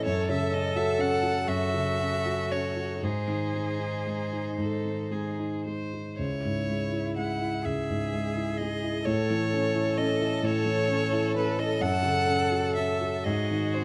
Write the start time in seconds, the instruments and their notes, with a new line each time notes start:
Already playing: violin A4
0.05 grand piano F#2, cello A4, violin C#5
0.29 grand piano C#3, violin E5
0.52 grand piano C#4, violin D#5
0.76 grand piano F#4, violin E5
0.99 grand piano C#4, violin F#5
1.23 grand piano F#4
1.47 grand piano F#2, cello F#4, violin E5
1.74 grand piano C#3
1.99 grand piano C#4
2.25 grand piano F#4
2.51 grand piano C#4, violin C#5
2.77 grand piano F#4
3.02 grand piano G#2, cello D#4, violin G#4 C5
3.28 grand piano D#3
3.54 grand piano G#3
3.80 grand piano D#4
4.07 grand piano G#3
4.32 grand piano D#4
4.58 grand piano G#2, violin A4
4.85 grand piano D#3
5.11 grand piano G#3, violin G#4
5.39 grand piano D#4
5.65 grand piano G#3, violin C5
5.93 grand piano D#4
6.18 grand piano C#2, cello E4, violin C#5
6.45 grand piano G#2
6.69 grand piano G#3
6.92 grand piano E4
7.17 grand piano G#3, violin F#5
7.41 grand piano E4
7.63 grand piano C#2, cello G#4, violin E5
7.90 grand piano G#2
8.14 grand piano G#3
8.36 grand piano E4
8.58 grand piano G#3, violin D#5
8.83 grand piano E4
9.05 grand piano A2, cello A4, violin A4 C#5
9.30 grand piano E3
9.53 grand piano C#4
9.75 grand piano E4
9.98 grand piano C#4, violin D#5
10.20 grand piano E4
10.43 grand piano A2, violin C#5
10.65 grand piano E3
10.88 grand piano C#4
11.12 grand piano E4
11.35 grand piano C#4, violin B4
11.58 grand piano E4, violin D#5
11.81 grand piano F#2, cello A4, violin F#5
12.03 grand piano C#3
12.26 grand piano C#4
12.51 grand piano F#4
12.75 grand piano C#4, violin E5
13.01 grand piano F#4
13.24 grand piano G#2, violin F#4 D#5, cello G#4
13.51 grand piano D#3
13.74 grand piano C4, violin C5